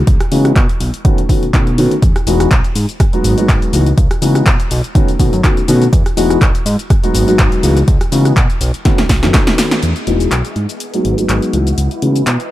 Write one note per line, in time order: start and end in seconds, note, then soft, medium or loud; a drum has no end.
0.07 0.18 C#2 loud
0.07 kick loud
0.07 closed hi-hat medium
0.20 cross-stick medium
0.20 closed hi-hat soft
0.32 0.52 C#3 medium
0.32 0.51 E3 medium
0.32 0.51 G#3 medium
0.32 0.51 B3 medium
0.32 0.51 D#4 medium
0.32 0.52 F#4 medium
0.32 open hi-hat loud
0.32 tambourine loud
0.45 cross-stick medium
0.45 closed hi-hat soft
0.56 0.67 B2 loud
0.56 kick loud
0.56 clap loud
0.56 closed hi-hat medium
0.69 closed hi-hat soft
0.80 0.91 B1 loud
0.80 open hi-hat loud
0.80 tambourine medium
0.94 closed hi-hat soft
0.94 tambourine soft
1.05 1.18 D#3 loud
1.05 1.18 A3 medium
1.05 1.18 B3 medium
1.05 1.18 C#4 medium
1.05 1.18 F#4 loud
1.05 kick loud
1.05 closed hi-hat medium
1.18 closed hi-hat soft
1.29 1.42 D#3 medium
1.29 1.42 A3 medium
1.29 1.42 B3 medium
1.29 1.42 C#4 medium
1.29 1.43 F#4 medium
1.29 kick medium
1.29 open hi-hat loud
1.42 1.51 B2 soft
1.42 closed hi-hat soft
1.42 tambourine soft
1.53 1.87 B2 loud
1.53 1.67 D#3 medium
1.53 1.67 A3 medium
1.53 1.67 B3 medium
1.53 1.67 C#4 medium
1.53 1.67 F#4 medium
1.53 kick loud
1.53 clap loud
1.53 closed hi-hat medium
1.67 closed hi-hat soft
1.77 1.91 D#3 loud
1.77 1.91 A3 medium
1.77 1.91 B3 medium
1.77 1.91 C#4 medium
1.77 1.91 F#4 loud
1.77 open hi-hat loud
1.77 tambourine medium
1.91 closed hi-hat soft
1.91 tambourine soft
2.02 2.13 E2 loud
2.02 kick loud
2.02 closed hi-hat medium
2.02 shaker soft
2.16 cross-stick medium
2.16 closed hi-hat soft
2.16 shaker soft
2.27 2.47 E1 medium
2.27 2.46 E3 medium
2.27 2.46 G#3 medium
2.27 2.47 B3 medium
2.27 2.47 D#4 medium
2.27 2.47 F#4 loud
2.27 open hi-hat loud
2.27 tambourine loud
2.27 shaker medium
2.40 cross-stick medium
2.40 closed hi-hat soft
2.40 tambourine soft
2.40 shaker soft
2.51 2.62 B1 loud
2.51 kick loud
2.51 clap loud
2.51 closed hi-hat medium
2.51 shaker soft
2.64 closed hi-hat soft
2.64 tambourine soft
2.64 shaker soft
2.75 2.86 G#2 loud
2.75 open hi-hat loud
2.75 tambourine medium
2.75 shaker medium
2.89 closed hi-hat soft
2.89 tambourine soft
2.89 shaker soft
3.00 kick loud
3.00 cross-stick medium
3.00 closed hi-hat medium
3.00 shaker soft
3.13 3.34 F#3 medium
3.13 3.34 G#3 medium
3.13 3.34 B3 medium
3.13 3.35 D#4 medium
3.13 3.35 F#4 medium
3.13 closed hi-hat soft
3.13 shaker soft
3.24 3.35 G#1 medium
3.24 open hi-hat loud
3.24 tambourine medium
3.24 shaker medium
3.37 3.70 F#3 medium
3.37 3.71 G#3 medium
3.37 3.71 B3 medium
3.37 3.71 D#4 medium
3.37 3.71 F#4 medium
3.37 closed hi-hat soft
3.37 shaker soft
3.49 3.60 G#1 medium
3.49 kick loud
3.49 clap loud
3.49 closed hi-hat medium
3.49 shaker soft
3.62 closed hi-hat soft
3.62 shaker soft
3.73 3.93 C#2 medium
3.73 3.86 E3 medium
3.73 3.86 G#3 medium
3.73 3.86 B3 medium
3.73 3.86 D#4 medium
3.73 3.86 F#4 medium
3.73 open hi-hat loud
3.73 tambourine loud
3.73 shaker medium
3.86 closed hi-hat soft
3.86 tambourine soft
3.86 shaker soft
3.98 4.08 C#2 loud
3.98 kick loud
3.98 closed hi-hat loud
3.98 shaker soft
4.11 cross-stick medium
4.11 closed hi-hat soft
4.11 tambourine soft
4.11 shaker soft
4.22 4.42 C#3 medium
4.22 4.41 E3 medium
4.22 4.42 G#3 medium
4.22 4.42 B3 medium
4.22 4.42 D#4 medium
4.22 4.42 F#4 medium
4.22 open hi-hat loud
4.22 tambourine medium
4.22 shaker medium
4.35 cross-stick medium
4.35 closed hi-hat soft
4.35 tambourine soft
4.35 shaker soft
4.46 4.57 B2 loud
4.46 kick loud
4.46 clap loud
4.46 closed hi-hat medium
4.46 shaker soft
4.60 closed hi-hat soft
4.60 tambourine soft
4.60 shaker soft
4.70 4.82 B1 loud
4.70 open hi-hat loud
4.70 tambourine medium
4.70 shaker medium
4.83 closed hi-hat soft
4.83 tambourine soft
4.83 shaker soft
4.95 5.08 D#3 loud
4.95 5.08 A3 medium
4.95 5.08 B3 medium
4.95 5.08 C#4 medium
4.95 5.08 F#4 loud
4.95 kick loud
4.95 closed hi-hat medium
4.95 shaker soft
5.07 5.17 B2 soft
5.07 closed hi-hat soft
5.07 tambourine soft
5.07 shaker soft
5.19 5.30 B2 loud
5.19 5.32 D#3 medium
5.19 5.32 A3 medium
5.19 5.33 B3 medium
5.19 5.33 C#4 medium
5.19 5.33 F#4 medium
5.19 kick medium
5.19 open hi-hat loud
5.19 tambourine loud
5.19 shaker medium
5.33 5.42 F#2 loud
5.33 closed hi-hat soft
5.33 tambourine soft
5.33 shaker soft
5.43 5.57 D#3 medium
5.43 5.57 A3 medium
5.43 5.57 B3 medium
5.43 5.57 C#4 medium
5.43 5.57 F#4 medium
5.43 kick loud
5.43 clap loud
5.43 closed hi-hat medium
5.43 shaker soft
5.57 closed hi-hat soft
5.57 tambourine soft
5.57 shaker soft
5.68 5.88 B2 loud
5.68 5.81 D#3 medium
5.68 5.81 A3 medium
5.68 5.81 B3 medium
5.68 5.81 C#4 medium
5.68 5.81 F#4 loud
5.68 open hi-hat loud
5.68 tambourine medium
5.68 shaker medium
5.81 closed hi-hat soft
5.81 tambourine soft
5.81 shaker soft
5.93 6.03 E2 loud
5.93 kick loud
5.93 closed hi-hat loud
5.93 tambourine soft
5.93 shaker medium
6.06 cross-stick medium
6.06 closed hi-hat soft
6.06 tambourine soft
6.06 shaker soft
6.17 6.37 E1 medium
6.17 6.36 E3 loud
6.17 6.36 G#3 medium
6.17 6.37 B3 medium
6.17 6.37 D#4 medium
6.17 6.37 F#4 loud
6.17 open hi-hat loud
6.17 tambourine medium
6.17 shaker medium
6.30 cross-stick medium
6.30 closed hi-hat soft
6.30 tambourine soft
6.30 shaker soft
6.41 6.52 B1 loud
6.41 kick loud
6.41 clap loud
6.41 closed hi-hat medium
6.41 tambourine medium
6.41 shaker soft
6.55 closed hi-hat soft
6.55 tambourine soft
6.55 shaker soft
6.66 6.77 G#2 loud
6.66 open hi-hat loud
6.66 tambourine medium
6.66 shaker medium
6.79 closed hi-hat soft
6.79 tambourine soft
6.79 shaker soft
6.90 kick loud
6.90 cross-stick medium
6.90 closed hi-hat medium
6.90 tambourine soft
6.90 shaker soft
7.03 7.25 F#3 medium
7.03 7.25 G#3 medium
7.03 7.25 B3 medium
7.03 7.25 D#4 medium
7.03 7.25 F#4 loud
7.03 closed hi-hat soft
7.03 tambourine soft
7.03 shaker soft
7.14 7.25 G#1 medium
7.14 open hi-hat loud
7.14 tambourine medium
7.14 shaker medium
7.27 7.61 F#3 medium
7.27 7.61 G#3 medium
7.27 7.61 B3 medium
7.27 7.61 D#4 medium
7.27 7.61 F#4 medium
7.27 closed hi-hat soft
7.27 tambourine soft
7.27 shaker soft
7.39 7.50 G#1 medium
7.39 kick loud
7.39 clap loud
7.39 closed hi-hat medium
7.39 shaker soft
7.52 closed hi-hat soft
7.52 tambourine soft
7.52 shaker soft
7.63 7.84 C#2 medium
7.63 7.76 E3 medium
7.63 7.76 G#3 medium
7.63 7.76 B3 medium
7.63 7.76 D#4 medium
7.63 7.76 F#4 medium
7.63 open hi-hat loud
7.63 tambourine medium
7.63 shaker medium
7.76 closed hi-hat soft
7.76 tambourine soft
7.76 shaker soft
7.88 7.99 C#2 loud
7.88 kick loud
7.88 closed hi-hat loud
7.88 tambourine medium
7.88 shaker soft
8.00 cross-stick medium
8.00 closed hi-hat soft
8.00 tambourine soft
8.00 shaker soft
8.12 8.32 C#3 medium
8.12 8.32 E3 medium
8.12 8.32 G#3 medium
8.12 8.32 B3 medium
8.12 8.32 D#4 medium
8.12 8.32 F#4 medium
8.12 open hi-hat loud
8.12 tambourine medium
8.12 shaker medium
8.25 cross-stick medium
8.25 closed hi-hat soft
8.25 tambourine soft
8.25 shaker soft
8.36 8.47 B2 loud
8.36 kick loud
8.36 clap loud
8.36 closed hi-hat loud
8.36 tambourine medium
8.36 shaker soft
8.49 closed hi-hat soft
8.49 tambourine soft
8.49 shaker soft
8.61 8.72 B1 loud
8.61 open hi-hat loud
8.61 tambourine loud
8.61 shaker medium
8.74 closed hi-hat soft
8.74 tambourine soft
8.74 shaker soft
8.85 8.98 D#3 loud
8.85 8.98 A3 medium
8.85 8.98 B3 medium
8.85 8.98 C#4 medium
8.85 8.99 F#4 loud
8.85 kick loud
8.85 snare medium
8.85 closed hi-hat medium
8.85 tambourine medium
8.85 shaker soft
8.98 9.08 B1 soft
8.98 snare medium
8.98 closed hi-hat soft
8.98 shaker soft
9.09 9.25 B1 loud
9.09 kick medium
9.09 snare medium
9.09 open hi-hat loud
9.09 tambourine medium
9.09 shaker medium
9.22 9.32 F#2 loud
9.22 9.81 D#3 medium
9.22 9.81 A3 medium
9.22 9.82 B3 medium
9.22 9.82 C#4 medium
9.22 9.82 F#4 medium
9.22 snare medium
9.22 closed hi-hat soft
9.22 shaker soft
9.34 kick loud
9.34 snare medium
9.34 clap loud
9.34 closed hi-hat loud
9.34 shaker soft
9.47 snare medium
9.47 closed hi-hat soft
9.47 shaker soft
9.58 snare loud
9.58 open hi-hat loud
9.58 tambourine loud
9.58 shaker medium
9.71 snare medium
9.71 closed hi-hat soft
9.71 shaker soft
9.83 9.94 E2 medium
9.83 10.55 G#4 medium
9.83 10.55 D#5 medium
9.83 10.55 E5 medium
9.83 closed hi-hat medium
9.83 shaker soft
9.96 closed hi-hat soft
9.96 shaker soft
10.07 10.28 E1 medium
10.07 10.27 E3 medium
10.07 10.27 G#3 medium
10.07 10.27 B3 medium
10.07 10.27 D#4 medium
10.07 10.27 F#4 medium
10.07 closed hi-hat medium
10.20 closed hi-hat soft
10.20 shaker medium
10.31 10.43 B1 medium
10.31 clap loud
10.31 closed hi-hat medium
10.31 shaker soft
10.45 closed hi-hat soft
10.45 shaker soft
10.56 10.67 G#2 medium
10.56 11.53 B3 medium
10.56 11.53 G#4 medium
10.56 12.49 F#5 medium
10.56 closed hi-hat soft
10.69 closed hi-hat soft
10.69 shaker medium
10.80 closed hi-hat medium
10.80 shaker soft
10.94 11.15 F#3 medium
10.94 11.15 G#3 medium
10.94 11.15 B3 medium
10.94 11.15 D#4 medium
10.94 11.15 F#4 medium
10.94 closed hi-hat soft
10.94 shaker soft
11.05 11.16 G#1 medium
11.05 closed hi-hat medium
11.18 11.51 F#3 medium
11.18 11.51 G#3 medium
11.18 11.51 B3 medium
11.18 11.51 D#4 medium
11.18 11.51 F#4 medium
11.18 closed hi-hat soft
11.18 shaker medium
11.29 11.40 G#1 medium
11.29 clap loud
11.29 closed hi-hat medium
11.29 shaker soft
11.42 closed hi-hat soft
11.42 shaker soft
11.53 11.74 C#2 medium
11.53 11.66 E3 medium
11.53 11.67 G#3 medium
11.53 11.67 B3 medium
11.53 11.67 D#4 medium
11.53 12.50 E4 medium
11.53 11.67 F#4 medium
11.53 12.50 B4 medium
11.53 12.51 D#5 medium
11.53 closed hi-hat medium
11.67 closed hi-hat soft
11.67 shaker medium
11.78 11.89 C#2 medium
11.78 closed hi-hat medium
11.78 shaker medium
11.91 closed hi-hat soft
11.91 shaker soft
12.02 12.23 C#3 medium
12.02 12.22 E3 medium
12.02 12.22 G#3 medium
12.02 12.22 B3 medium
12.02 12.22 D#4 medium
12.02 12.22 F#4 medium
12.02 closed hi-hat medium
12.16 closed hi-hat soft
12.16 shaker medium
12.27 12.38 B2 loud
12.27 clap loud
12.27 closed hi-hat medium
12.27 shaker soft
12.40 closed hi-hat soft
12.40 shaker soft